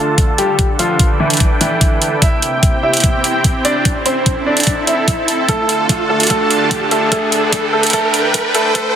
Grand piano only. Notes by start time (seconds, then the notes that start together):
Already playing: A3 A4
0.38 G3 G4
0.79 F3 F4
1.20 E3 E4
1.61 E3 E4
2.22 E4 E5
2.83 E4 E5
3.65 D4 D5
4.06 C4 C5
4.46 D4 D5
4.87 E4 E5
5.49 A3 A4
6.10 A3 A4
6.30 A3 A4
6.91 A3 A4
7.12 A3 A4
7.73 A3 A4
7.93 A3 A4
8.55 A3 A4
8.75 A3 A4